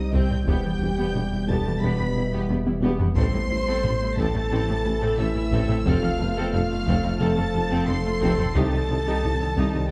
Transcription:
Already playing: C2 C3 G3 C4 D#4 G4 C5 D#5 D#6
0.12 C2 C4 G4 G5 G6, taiko
0.29 C2 C4 G4, taiko low-mid
0.46 E1 E2 B2 B3 G4 E5 G5 G6, taiko
0.63 E2 B3 G4
0.80 E1 E2 G3 E4
0.98 E2 B3 G4
1.13 E1 E2 B3 G4, taiko low-mid
1.31 E2 G3 E4
1.48 E1 E2 B3 G4 A4 A5 A6, taiko
1.65 E2 B3 G4
1.81 E1 E2 B3 G4 B4 B5 B6
1.99 E2 B3 G4
2.15 E1 E2 G3 E4
2.32 E2 B3 G4
2.49 E1 E2 B3 G4, taiko high
2.65 E2 G3 E4, taiko high
2.82 E1 E2 B3 G4, taiko high
3.00 E2 B3 G4, taiko low
3.14 A1 A2 C3 E3 A3 C4 A4 C5 C6 C7, taiko
3.33 A2 C4 A4
3.50 A1 A2 A3 E4 C5
3.66 A2 C4 A4
3.83 A1 A2 C4 A4, taiko low-mid
4.01 A2 A3 E4
4.17 A1 A2 C4 A4 A5 A6, taiko
4.34 A2 C4 A4
4.51 A1 A2 C4 A4
4.68 A2 C4 A4
4.84 A1 A2 A3 E4
5.01 A2 C4 A4
5.18 A1 A2 C4 E4 A4 E5 E6
5.34 A2 A3 E4
5.52 A1 A2 C4 A4, taiko
5.69 A2 C4 A4, taiko low-mid
5.84 F1 F2 F3 C4 F4 A4 F5 F6, taiko
6.02 F2 C4 A4, taiko rim
6.19 F1 F2 A3 B3 F4 A4
6.36 F2 C4 A4, taiko rim
6.53 F1 F2 C4 F4 A4 F5 F6, taiko low-mid
6.70 F2 A3 F4
6.86 F1 F2 C4 A4, taiko
7.03 F2 C4 A4
7.20 F1 F2 C4 A4 A5 A6
7.36 F2 C4 A4
7.54 F1 F2 A3 F4
7.70 F2 C4 A4
7.87 F1 F2 C4 A4 C6 C7
8.05 F2 A3 F4
8.21 F1 F2 C4 A4, taiko
8.38 F2 C4 A4, taiko low-mid
8.54 C2 D#3 G3 D#4 G4 A4 C5 A5 A6, taiko
8.72 C2 D#4 G4
8.89 C2 C4 D#4
9.06 C2 D#4 G4
9.24 C2 D#4 G4, taiko low-mid
9.40 C2 C4 D#4
9.57 C2 D#4 G4, taiko
9.74 C2 D#4 G4

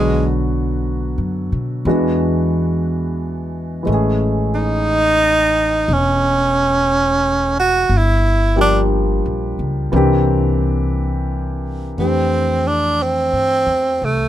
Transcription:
Already playing: B1 D3 F#3 G#3 B3 F#4
1.18 F#2
1.52 B2
1.85 E2 E3 G#3 B3 D4 F#4
3.83 A1 E3 G#3
3.88 A3 C#4
3.94 G#4
4.55 D#4
5.88 E1
5.93 C#4
7.60 F#4
7.89 G1
7.98 E4
8.56 F3 G3 A#3 D4 G4
8.61 D4
9.26 A#1
9.59 C#2
9.92 C2 E3 A#3 C4 D4
9.96 G4
11.98 F2 E3 A3 C4 D4 G4
12.68 D4
13.03 C4
13.33 G2
13.66 E2
14.02 C2 A3

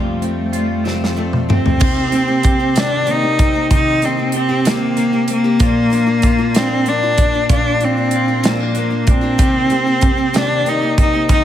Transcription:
Already playing: F2 C3 G3 A3 C4 F4
0.22 G3 A3 C4 F4, closed hi-hat
0.53 G3 A3 C4 F4, closed hi-hat
0.85 F2 C3 G3 A3 C4 F4, snare
1.04 snare
1.16 G3 A3 C4 F4
1.33 mid tom
1.49 G3 A3 C4 F4, mid tom
1.66 floor tom
1.79 C3 D#3 A#3 C4 G4, kick, crash
2.12 D#3 A#3 C4 G4, closed hi-hat
2.28 A#3 C4 G4
2.43 G4, kick, closed hi-hat
2.60 A#3 C4 G4
2.75 C3 D#3 A#3 C4 D4 G4, snare, closed hi-hat
3.06 D#3 A#3 C4 G4, closed hi-hat
3.11 D#4
3.23 A#3 C4 G4
3.39 C4, kick, closed hi-hat
3.54 A#3 C4 G4
3.71 C3 D#3 A#3 C4 D#4 G4, kick, closed hi-hat
4.01 D#3 A#3 C4 G4, closed hi-hat
4.17 A#3 C4 G4
4.32 G4, closed hi-hat
4.37 C4
4.49 A#3 C4 G4
4.65 C3 D#3 A#3 C4 G4, snare, closed hi-hat
4.96 D#3 A#3 C4 G4, closed hi-hat
5.13 A#3 C4 G4
5.28 C4, closed hi-hat
5.32 A#3
5.44 A#3 C4 G4
5.59 A#2 F3 A#3 D4 F4, kick, closed hi-hat
5.90 F3 A#3 D4 F4, closed hi-hat
6.07 A#3 D4 F4
6.22 F4, kick, closed hi-hat
6.38 A#3 D4 F4
6.55 A#2 F3 A#3 C4 D4 F4, snare, closed hi-hat
6.86 F3 A#3 D4 F4, closed hi-hat
7.03 A#3 D4 F4
7.18 D4, kick, closed hi-hat
7.34 A#3 D4 F4
7.49 A#2 F3 A#3 D4 F4, kick, closed hi-hat
7.81 F3 A#3 C4 D4 F4, closed hi-hat
7.97 A#3 D4 F4
8.11 F4, closed hi-hat
8.28 A#3 D4 F4
8.43 A#2 F3 A#3 C4 D4 F4, snare, closed hi-hat
8.48 A#3
8.60 D4
8.75 F3 A#3 D4 F4, closed hi-hat
8.90 A#3 D4 F4
9.07 C4 D4, kick, closed hi-hat
9.21 A#3 D4 F4
9.38 C3 D#3 A#3 C4 G4, kick, closed hi-hat
9.70 D#3 A#3 C4 G4, closed hi-hat
9.87 A#3 C4 G4
10.01 G4, kick, closed hi-hat
10.17 A#3 C4 G4
10.33 C3 D#3 A#3 C4 G4, snare, closed hi-hat
10.38 D4
10.65 D#3 A#3 C4 D#4 G4, closed hi-hat
10.82 A#3 C4 G4
10.98 C4 D#4, kick, closed hi-hat
11.13 A#3 C4 G4
11.29 C3 D#3 A#3 C4 D#4 G4, kick, closed hi-hat

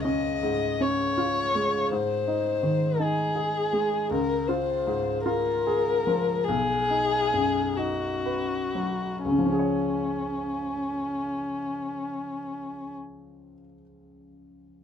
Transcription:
Already playing: C#2
0.03 C#4 D#5
0.43 G#2
0.80 C#4 C#5
1.18 F4
1.55 G#3
1.92 G#2 C5
2.28 D#4
2.63 D#3
2.99 D#4 G#4
3.35 G#4
3.73 G#3
4.11 C#2 A#4
4.47 F4 C5
4.87 G#2
5.23 F4 A#4
5.67 G#4
6.07 F3
6.44 B1 G#4
6.90 D#4
7.33 F#2
7.77 D#4 F#4
8.26 B4
8.75 F#3
9.24 C#2 C#4
9.31 C#3
9.39 F3
9.46 C#4
9.52 G#4
9.59 C#5

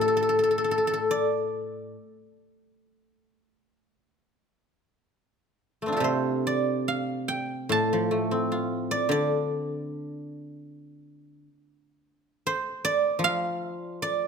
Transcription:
Already playing: A2 G4
0.01 A4
0.08 A4
0.17 A4
0.23 A4
0.29 A4
0.39 A4
0.44 A4
0.51 A4
0.58 A4
0.64 A4
0.71 A4
0.78 A4
0.87 A4
0.94 A4
1.11 D5
5.82 A3
5.86 C4 D4
5.92 F4
5.96 C3 G4 A4
6.04 C5
6.47 D5
6.88 F5
7.28 G5
7.69 A2 A5
7.93 F3
8.11 A3
8.31 C4
8.52 F4
8.91 D5
9.09 D3 D5
12.47 C5
12.85 D5
13.19 F3
13.24 F5
13.73 D5
14.02 D5

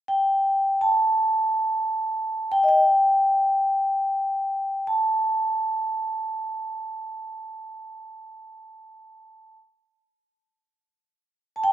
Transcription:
0.08 G5
0.81 A5
2.52 G5
2.64 D#5
2.69 G5
4.87 A5
11.56 A5
11.64 G5

